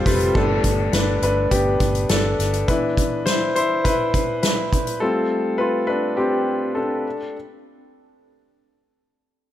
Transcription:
0.00 0.37 C3 medium
0.00 0.06 G3 medium
0.00 0.06 C4 medium
0.00 0.06 F4 medium
0.00 0.35 A4 medium
0.00 0.38 C5 medium
0.06 0.30 F1 medium
0.06 0.33 G3 medium
0.06 0.33 C4 medium
0.06 0.33 F4 medium
0.06 0.33 B4 medium
0.06 kick medium
0.06 snare soft
0.06 open hi-hat medium
0.20 closed hi-hat soft
0.35 0.59 G1 medium
0.35 2.64 G3 soft
0.35 2.64 A3 soft
0.35 1.51 B3 medium
0.35 0.90 D4 medium
0.35 0.95 A4 medium
0.35 kick loud
0.35 crash medium
0.64 0.88 G1 medium
0.64 kick medium
0.64 closed hi-hat medium
0.93 1.17 G1 medium
0.93 1.21 D4 medium
0.93 1.22 B4 medium
0.93 snare medium
0.93 closed hi-hat medium
1.22 1.46 G1 medium
1.22 1.31 D4 medium
1.22 1.30 B4 medium
1.22 closed hi-hat medium
1.51 1.75 G1 medium
1.51 2.06 B3 medium
1.51 2.11 G4 medium
1.51 kick medium
1.51 closed hi-hat medium
1.80 2.04 G1 medium
1.80 kick medium
1.80 closed hi-hat medium
1.95 closed hi-hat soft
2.09 2.34 G1 medium
2.09 2.51 D4 medium
2.09 2.50 A4 medium
2.09 snare loud
2.09 closed hi-hat medium
2.39 2.63 G1 medium
2.39 snare soft
2.39 closed hi-hat medium
2.54 closed hi-hat soft
2.68 3.52 E3 soft
2.68 3.52 B3 soft
2.68 3.52 D4 medium
2.68 3.23 E4 medium
2.68 3.28 B4 medium
2.68 kick medium
2.68 closed hi-hat medium
2.97 kick medium
2.97 closed hi-hat medium
3.26 3.54 E4 medium
3.26 3.54 C5 medium
3.26 snare medium
3.26 closed hi-hat medium
3.56 3.84 E4 medium
3.56 3.86 C5 medium
3.56 closed hi-hat medium
3.84 4.40 E4 medium
3.84 4.41 B4 medium
3.84 kick medium
3.84 closed hi-hat medium
4.14 kick medium
4.14 closed hi-hat medium
4.43 4.85 E4 medium
4.43 4.84 B4 medium
4.43 snare medium
4.43 closed hi-hat medium
4.73 kick medium
4.73 closed hi-hat medium
4.87 closed hi-hat soft
5.00 5.85 G3 soft
5.00 5.85 A3 soft
5.00 5.56 C4 medium
5.00 5.59 F4 soft
5.00 5.55 A4 medium
5.58 5.87 F4 medium
5.58 5.85 B4 medium
5.87 6.16 D4 medium
5.87 6.18 B4 medium
6.17 6.73 C4 medium
6.17 6.77 G4 medium
6.75 7.17 D4 soft
6.75 7.16 A4 medium

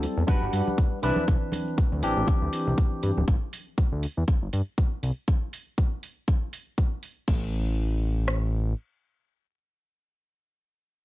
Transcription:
0.00 0.23 G3 medium
0.00 0.23 C4 medium
0.00 0.23 E4 medium
0.00 0.24 A4 medium
0.00 muted clean electric guitar stroke soft
0.00 open hi-hat medium
0.00 shaker loud
0.17 0.24 E2 medium
0.17 shaker soft
0.27 0.39 G1 soft
0.27 0.98 G3 medium
0.27 0.98 D4 medium
0.27 0.66 F#4 medium
0.27 0.67 G4 medium
0.27 0.99 B4 medium
0.27 0.67 B4 medium
0.27 0.98 F#5 medium
0.27 kick loud
0.27 high conga medium
0.27 shaker medium
0.42 0.49 G1 medium
0.53 0.61 G2 loud
0.53 open hi-hat loud
0.53 shaker medium
0.67 high conga medium
0.67 shaker soft
0.78 kick loud
0.78 shaker soft
1.02 1.11 C2 medium
1.02 1.98 E3 medium
1.02 1.98 C4 medium
1.02 1.23 D4 medium
1.02 1.99 D4 medium
1.02 1.24 E4 medium
1.02 1.99 B4 medium
1.02 1.24 B4 medium
1.02 open hi-hat medium
1.02 shaker medium
1.16 high conga medium
1.16 shaker soft
1.28 1.36 C2 loud
1.28 kick loud
1.28 shaker medium
1.52 open hi-hat loud
1.52 high conga medium
1.52 shaker medium
1.67 shaker soft
1.78 kick loud
1.78 shaker medium
1.92 2.02 D2 medium
1.92 high conga medium
1.92 shaker soft
2.02 2.14 A1 soft
2.02 3.23 E3 medium
2.02 3.23 C4 medium
2.02 3.24 D4 medium
2.02 3.24 G4 loud
2.02 open hi-hat medium
2.02 shaker medium
2.16 2.23 A1 medium
2.16 shaker soft
2.27 kick loud
2.27 high conga medium
2.27 shaker soft
2.42 2.48 D2 loud
2.53 open hi-hat loud
2.53 shaker loud
2.67 2.74 C2 medium
2.67 high conga medium
2.67 shaker soft
2.78 kick loud
3.02 3.11 G2 medium
3.02 open hi-hat medium
3.02 shaker medium
3.17 3.24 D1 loud
3.17 high conga medium
3.17 shaker soft
3.28 3.36 A1 loud
3.28 kick loud
3.53 open hi-hat loud
3.78 kick loud
3.92 4.06 D2 medium
4.03 open hi-hat medium
4.17 4.24 E2 medium
4.28 4.39 G1 soft
4.28 kick loud
4.42 4.49 G1 medium
4.53 4.61 G2 medium
4.53 open hi-hat loud
4.78 kick loud
5.03 5.11 C2 medium
5.03 open hi-hat medium
5.28 kick loud
5.53 open hi-hat loud
5.78 kick loud
6.03 open hi-hat medium
6.28 kick loud
6.53 open hi-hat loud
6.78 kick loud
7.03 open hi-hat medium
7.28 8.74 A1 medium
7.28 kick loud
7.28 crash medium
8.28 cross-stick medium

